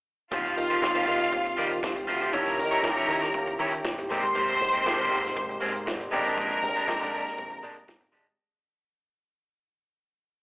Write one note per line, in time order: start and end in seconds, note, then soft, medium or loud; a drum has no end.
0.31 0.52 D#2 loud
0.31 0.72 D#3 medium
0.31 4.06 F3 medium
0.31 0.72 G3 medium
0.31 0.72 C4 medium
0.31 2.32 C4 medium
0.31 0.55 F4 medium
0.31 2.05 F4 medium
0.31 2.32 F4 medium
0.31 0.72 F4 medium
0.31 6.08 G4 medium
0.31 0.55 G4 medium
0.31 0.56 C5 medium
0.31 2.05 F5 loud
0.31 kick loud
0.31 closed hi-hat medium
0.45 closed hi-hat soft
0.57 0.77 D#3 medium
0.57 muted clean electric guitar stroke soft
0.57 open hi-hat medium
0.70 0.81 F4 soft
0.70 0.80 G4 medium
0.70 0.80 C5 medium
0.70 closed hi-hat soft
0.82 0.93 D#2 loud
0.82 1.61 D#3 medium
0.82 1.61 G3 medium
0.82 1.62 C4 medium
0.82 1.62 F4 medium
0.82 muted clean electric guitar stroke soft
0.82 kick medium
0.82 snare loud
0.95 1.05 D#2 medium
0.95 1.05 F4 medium
0.95 1.06 G4 medium
0.95 1.06 C5 medium
0.95 closed hi-hat soft
1.06 1.28 D#3 medium
1.06 1.18 F4 medium
1.06 1.18 G4 medium
1.06 1.18 C5 medium
1.06 open hi-hat medium
1.20 muted clean electric guitar stroke soft
1.20 snare soft
1.20 closed hi-hat soft
1.32 1.53 D#2 loud
1.32 muted clean electric guitar stroke soft
1.32 kick loud
1.32 closed hi-hat medium
1.45 muted clean electric guitar stroke soft
1.45 closed hi-hat soft
1.57 1.78 D#3 medium
1.57 1.71 F4 medium
1.57 1.71 G4 medium
1.57 1.71 D5 medium
1.57 open hi-hat soft
1.71 muted clean electric guitar stroke soft
1.71 closed hi-hat soft
1.83 2.03 C2 medium
1.83 muted clean electric guitar stroke soft
1.83 kick loud
1.83 snare loud
1.96 muted clean electric guitar stroke soft
1.96 closed hi-hat soft
2.07 2.28 D2 medium
2.07 2.21 F4 medium
2.07 2.20 G4 medium
2.07 2.20 C5 medium
2.07 open hi-hat medium
2.21 2.31 F4 medium
2.21 2.31 G4 medium
2.21 2.31 C5 medium
2.21 closed hi-hat soft
2.32 2.60 D#2 medium
2.32 2.73 D#3 medium
2.32 2.40 F#3 medium
2.32 4.08 C#4 medium
2.32 2.74 C#4 medium
2.32 2.56 E4 medium
2.32 4.08 E4 medium
2.32 2.74 E4 medium
2.32 2.56 G4 medium
2.32 3.81 A#4 medium
2.32 2.57 C#5 medium
2.32 3.81 A#5 loud
2.32 kick loud
2.32 closed hi-hat medium
2.39 2.76 G3 medium
2.47 closed hi-hat soft
2.58 2.78 D#3 loud
2.58 muted clean electric guitar stroke soft
2.58 open hi-hat medium
2.71 2.82 E4 medium
2.71 2.81 G4 medium
2.71 2.81 C#5 medium
2.71 closed hi-hat soft
2.83 2.95 D#2 loud
2.83 3.63 D#3 medium
2.83 3.63 G3 medium
2.83 3.63 C#4 medium
2.83 2.90 E4 medium
2.83 muted clean electric guitar stroke soft
2.83 kick loud
2.83 snare medium
2.90 3.66 G4 loud
2.96 3.07 D#2 medium
2.96 3.08 E4 medium
2.96 3.09 G4 medium
2.96 3.09 C#5 medium
2.96 closed hi-hat soft
3.09 3.29 D#3 loud
3.09 3.20 E4 medium
3.09 3.20 G4 medium
3.09 3.20 C#5 medium
3.09 open hi-hat medium
3.22 muted clean electric guitar stroke medium
3.22 snare soft
3.22 closed hi-hat soft
3.33 3.54 D#2 medium
3.33 muted clean electric guitar stroke soft
3.33 kick loud
3.33 closed hi-hat medium
3.47 muted clean electric guitar stroke soft
3.47 closed hi-hat soft
3.59 3.79 D#3 medium
3.59 3.73 E4 medium
3.59 3.73 G4 medium
3.59 3.72 C#5 loud
3.59 open hi-hat medium
3.73 muted clean electric guitar stroke soft
3.73 closed hi-hat soft
3.85 4.05 G1 medium
3.85 muted clean electric guitar stroke soft
3.85 kick loud
3.85 snare loud
3.98 muted clean electric guitar stroke soft
3.98 closed hi-hat soft
4.09 4.50 G#1 loud
4.09 4.71 C3 medium
4.09 4.71 G#3 medium
4.09 6.10 G#3 medium
4.09 4.24 A#3 medium
4.09 4.72 A#3 medium
4.09 4.24 C4 medium
4.09 4.72 G4 medium
4.09 4.23 G4 medium
4.09 6.10 A#4 medium
4.09 5.83 C5 loud
4.09 6.10 C5 medium
4.09 5.83 C6 loud
4.09 open hi-hat medium
4.23 muted clean electric guitar stroke soft
4.23 closed hi-hat soft
4.35 4.59 A#3 medium
4.35 4.59 C4 medium
4.35 4.59 G4 medium
4.35 kick medium
4.35 closed hi-hat medium
4.49 closed hi-hat soft
4.60 4.81 G#2 loud
4.60 muted clean electric guitar stroke soft
4.60 open hi-hat medium
4.73 4.83 A#3 medium
4.73 4.83 C4 medium
4.73 4.83 G4 medium
4.73 closed hi-hat soft
4.85 4.97 G#1 loud
4.85 5.65 C3 medium
4.85 5.65 G#3 medium
4.85 5.65 A#3 medium
4.85 5.65 G4 loud
4.85 muted clean electric guitar stroke soft
4.85 kick medium
4.85 snare medium
4.98 5.09 G#1 medium
4.98 5.09 A#3 medium
4.98 5.10 C4 medium
4.98 5.11 G4 medium
4.98 closed hi-hat soft
5.10 5.31 G#2 medium
5.10 5.21 A#3 medium
5.10 5.22 C4 medium
5.10 5.22 G4 medium
5.10 open hi-hat medium
5.23 muted clean electric guitar stroke soft
5.23 snare soft
5.23 closed hi-hat medium
5.36 5.57 G#1 medium
5.36 muted clean electric guitar stroke soft
5.36 kick loud
5.36 closed hi-hat medium
5.49 muted clean electric guitar stroke soft
5.49 closed hi-hat soft
5.60 5.89 G#2 medium
5.60 5.75 A#3 medium
5.60 5.74 C4 medium
5.60 5.74 G#4 medium
5.60 open hi-hat medium
5.74 muted clean electric guitar stroke soft
5.74 closed hi-hat medium
5.86 6.07 G#1 medium
5.86 muted clean electric guitar stroke soft
5.86 kick loud
5.86 snare loud
6.00 muted clean electric guitar stroke soft
6.00 closed hi-hat soft
6.11 6.65 A#1 medium
6.11 6.73 D3 medium
6.11 6.25 G#3 medium
6.11 6.73 G#3 medium
6.11 8.36 G#3 medium
6.11 8.36 A#3 medium
6.11 6.73 C4 medium
6.11 6.25 D4 medium
6.11 8.36 D4 medium
6.11 6.24 G4 medium
6.11 6.74 G4 medium
6.11 8.09 A#4 loud
6.11 8.09 A#5 loud
6.11 open hi-hat medium
6.25 6.35 G#3 medium
6.25 6.35 D4 soft
6.25 6.35 G4 medium
6.25 closed hi-hat soft
6.37 6.60 G#3 medium
6.37 6.61 D4 medium
6.37 6.61 G4 medium
6.37 kick loud
6.37 closed hi-hat medium
6.51 closed hi-hat soft
6.63 6.83 A#2 loud
6.63 muted clean electric guitar stroke soft
6.63 open hi-hat medium
6.76 6.86 G#3 medium
6.76 6.85 D4 medium
6.76 6.85 G4 medium
6.76 closed hi-hat soft
6.87 6.99 A#1 medium
6.87 6.94 C#3 medium
6.87 7.66 G#3 medium
6.87 7.67 C4 medium
6.87 7.67 G4 loud
6.87 muted clean electric guitar stroke soft
6.87 kick medium
6.87 snare loud
6.93 7.69 D3 medium
7.01 7.11 A#1 medium
7.01 7.11 G#3 medium
7.01 7.12 D4 medium
7.01 7.13 G4 medium
7.01 closed hi-hat soft
7.12 7.33 A#2 medium
7.12 7.23 G#3 medium
7.12 7.24 D4 medium
7.12 7.24 G4 medium
7.12 open hi-hat medium
7.26 muted clean electric guitar stroke soft
7.26 snare soft
7.26 closed hi-hat soft
7.37 7.58 A#1 medium
7.37 muted clean electric guitar stroke soft
7.37 kick medium
7.37 closed hi-hat medium
7.51 muted clean electric guitar stroke soft
7.51 closed hi-hat soft
7.63 7.83 A#2 medium
7.63 7.77 G#3 medium
7.63 7.76 D4 medium
7.63 7.75 G4 medium
7.63 open hi-hat soft
7.76 muted clean electric guitar stroke soft
7.76 closed hi-hat soft
7.88 8.08 G1 medium
7.88 muted clean electric guitar stroke soft
7.88 kick loud
7.88 snare loud
8.01 muted clean electric guitar stroke medium
8.01 closed hi-hat soft
8.12 8.33 G#1 medium
8.12 8.26 G#3 medium
8.12 8.26 D4 medium
8.12 8.25 G4 medium
8.12 open hi-hat medium
8.26 muted clean electric guitar stroke soft
8.26 closed hi-hat soft